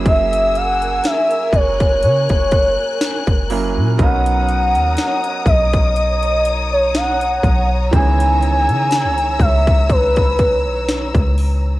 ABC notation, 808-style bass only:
X:1
M:4/4
L:1/16
Q:"Swing 16ths" 1/4=61
K:B
V:1 name="808-style bass" clef=bass
F,,,4 z2 F,,,2 C, F,,,2 z2 F,,,2 A,, | B,,,3 D,, z2 B,,,8 B,,,2 | C,,3 C,3/2 C,,3/2 C,,4- C,, B,,,2 C,,3 |]